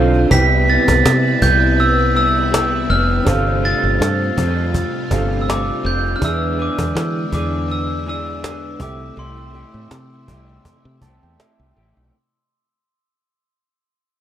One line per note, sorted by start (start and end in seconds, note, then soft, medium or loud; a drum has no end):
0.00 0.24 B1 medium
0.00 0.27 D3 medium
0.00 0.30 D3 medium
0.00 0.28 C4 medium
0.00 0.31 C4 medium
0.00 0.30 D4 medium
0.00 0.27 F4 medium
0.00 0.31 F4 medium
0.00 0.31 A4 medium
0.00 0.31 C5 medium
0.00 0.32 F5 medium
0.14 cajon slap soft
0.28 0.77 C2 loud
0.28 6.17 C3 medium
0.28 0.66 C3 medium
0.28 0.67 G3 medium
0.28 0.68 B3 medium
0.28 3.23 C4 medium
0.28 0.37 D#4 medium
0.28 3.23 E4 medium
0.28 0.68 E4 medium
0.28 3.22 G4 medium
0.28 3.23 B4 medium
0.28 3.22 B4 medium
0.28 0.69 B6 loud
0.28 cajon bass loud
0.34 3.24 E4 medium
0.34 3.24 G5 medium
0.51 cajon slap soft
0.67 1.40 C3 medium
0.67 1.41 G3 medium
0.67 1.41 B3 medium
0.67 1.42 E4 medium
0.67 1.45 A6 loud
0.67 cajon slap soft
0.88 1.01 C2 medium
0.88 cajon bass loud
1.05 1.35 C3 loud
1.05 cajon slap loud
1.27 cajon slap soft
1.41 2.86 C2 medium
1.41 2.12 C3 medium
1.41 2.14 G3 medium
1.41 2.14 B3 medium
1.41 2.15 E4 medium
1.41 1.80 G6 loud
1.41 cajon bass medium
1.62 cajon slap soft
1.79 2.15 E6 medium
1.79 cajon slap soft
1.99 cajon slap soft
2.14 2.50 C3 medium
2.14 2.50 G3 medium
2.14 2.52 B3 medium
2.14 2.52 E4 medium
2.14 2.86 E6 medium
2.14 cajon slap soft
2.37 cajon slap soft
2.52 2.87 C3 medium
2.52 2.88 G3 medium
2.52 2.89 B3 medium
2.52 2.89 E4 medium
2.52 cajon slap loud
2.74 cajon slap soft
2.88 3.19 F1 medium
2.88 3.26 C3 medium
2.88 3.24 G3 medium
2.88 3.25 B3 medium
2.88 3.26 E4 medium
2.88 3.66 F6 loud
3.10 cajon slap soft
3.25 3.72 G1 loud
3.25 3.62 G3 medium
3.25 6.20 A3 medium
3.25 3.62 C4 medium
3.25 5.06 D4 medium
3.25 3.63 F4 medium
3.25 6.20 F4 medium
3.25 5.07 G4 medium
3.25 3.63 A4 medium
3.25 5.08 A4 medium
3.25 5.08 C5 medium
3.25 cajon bass loud
3.30 5.09 F5 medium
3.47 cajon slap soft
3.63 4.36 G3 medium
3.63 4.36 C4 medium
3.63 4.37 F4 medium
3.63 4.38 A4 medium
3.63 5.48 A6 loud
3.63 cajon slap soft
3.83 3.97 G1 medium
3.83 cajon slap soft
4.00 4.30 G2 loud
4.00 cajon slap loud
4.23 cajon slap soft
4.37 4.83 F2 medium
4.37 5.10 G3 medium
4.37 5.10 C4 medium
4.37 5.11 F4 medium
4.37 5.12 A4 medium
4.37 cajon bass medium
4.58 cajon slap soft
4.74 cajon bass medium
4.74 cajon slap soft
4.94 cajon slap soft
5.11 5.70 G1 loud
5.11 5.47 G3 medium
5.11 5.47 C4 medium
5.11 6.18 D4 medium
5.11 5.48 F4 medium
5.11 6.22 G4 medium
5.11 6.22 A4 medium
5.11 5.49 A4 medium
5.11 6.23 C5 medium
5.11 6.23 F5 medium
5.11 cajon bass medium
5.32 cajon slap soft
5.42 5.48 E6 medium
5.48 5.83 G3 medium
5.48 5.84 C4 medium
5.48 5.85 F4 medium
5.48 5.85 A4 medium
5.48 5.87 D6 loud
5.48 cajon slap loud
5.69 cajon slap soft
5.84 6.14 F1 loud
5.84 6.21 G3 medium
5.84 6.21 C4 medium
5.84 6.22 F4 medium
5.84 6.22 A4 medium
5.84 6.14 G6 medium
6.06 cajon slap soft
6.16 8.75 D4 medium
6.16 6.22 F6 medium
6.21 6.68 E2 loud
6.21 8.78 D3 medium
6.21 6.55 E3 medium
6.21 8.78 G#3 medium
6.21 6.56 B3 medium
6.21 6.57 D4 medium
6.21 8.76 E4 medium
6.21 12.10 E4 medium
6.21 6.29 F4 soft
6.21 6.58 G#4 medium
6.21 8.77 B4 medium
6.21 8.78 E5 medium
6.21 6.58 E6 loud
6.21 cajon bass loud
6.28 8.80 G#4 medium
6.42 cajon slap soft
6.57 7.31 E3 medium
6.57 7.31 B3 medium
6.57 7.32 D4 medium
6.57 7.32 G#4 medium
6.57 cajon slap soft
6.62 7.30 D6 medium
6.79 6.92 E2 medium
6.79 cajon bass loud
6.95 7.25 E3 loud
6.95 cajon slap loud
7.17 cajon slap soft
7.32 8.76 E2 medium
7.32 8.06 E3 medium
7.32 8.05 B3 medium
7.32 8.06 D4 medium
7.32 8.07 G#4 medium
7.32 7.72 D6 medium
7.32 cajon bass medium
7.53 cajon slap soft
7.69 8.08 E6 medium
7.69 cajon slap medium
7.89 cajon slap soft
8.06 8.41 E3 medium
8.06 8.42 B3 medium
8.06 8.43 D4 medium
8.06 8.43 G#4 medium
8.06 8.84 E6 medium
8.06 cajon slap soft
8.26 cajon slap soft
8.42 8.80 E3 medium
8.42 8.80 B3 medium
8.42 8.81 D4 medium
8.42 8.81 G#4 medium
8.42 cajon slap loud
8.79 9.10 C2 loud
8.79 9.15 C3 medium
8.79 12.11 C3 medium
8.79 9.15 A3 medium
8.79 12.10 A3 medium
8.79 11.72 C4 medium
8.79 11.72 E4 medium
8.79 9.16 E4 medium
8.79 11.73 G4 medium
8.79 9.17 G4 medium
8.79 11.73 A4 medium
8.79 9.19 D6 medium
8.79 cajon bass loud
8.84 11.39 E5 medium
9.00 cajon slap soft
9.16 9.63 C2 loud
9.16 9.51 C3 medium
9.16 9.52 A3 medium
9.16 9.53 E4 medium
9.16 9.53 G4 medium
9.16 11.36 C6 medium
9.16 cajon slap soft
9.53 10.27 C3 medium
9.53 10.28 A3 medium
9.53 10.28 E4 medium
9.53 10.29 G4 medium
9.53 cajon slap soft
9.73 9.88 A2 medium
9.73 cajon slap soft
9.91 10.30 C3 medium
9.91 cajon slap loud
10.12 cajon slap soft
10.27 10.58 C2 medium
10.27 11.02 C3 medium
10.27 11.03 A3 medium
10.27 11.04 E4 medium
10.27 11.04 G4 medium
10.27 cajon bass medium
10.48 cajon slap soft
10.65 cajon bass medium
10.65 cajon slap soft
10.85 10.99 C3 loud
11.01 11.18 C2 medium
11.01 11.37 C3 medium
11.01 11.38 A3 medium
11.01 11.38 E4 medium
11.01 11.39 G4 medium
11.01 11.21 A5 medium
11.01 cajon bass loud
11.22 11.36 E2 medium
11.22 11.39 G5 medium
11.22 cajon slap soft
11.38 11.74 C3 medium
11.38 11.75 A3 medium
11.38 11.75 E4 medium
11.38 11.76 G4 medium
11.38 12.10 E5 medium
11.38 cajon slap loud
11.59 11.73 C2 medium
11.59 cajon slap soft
11.75 11.93 A1 medium
11.75 12.13 C3 medium
11.75 12.13 A3 medium
11.75 12.13 E4 medium
11.75 12.14 G4 medium
11.97 12.10 B1 medium